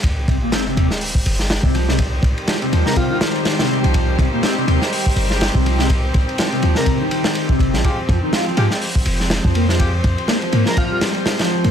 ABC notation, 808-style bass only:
X:1
M:4/4
L:1/16
Q:"Swing 16ths" 1/4=123
K:Cm
V:1 name="808-style bass" clef=bass
z2 C,, z3 E,, z3 G,,,3 C,,3- | C,,2 C,, z3 E,, z8 C,,- | C,,2 C,, z3 E,, z3 G,,,3 C,,3- | C,,2 C,, z3 E,, z6 z G,,, B,,, |
z2 F,, z3 A,, z3 F,,,3 F,,3- | F,,2 F,, z3 A,, z8 F,, |]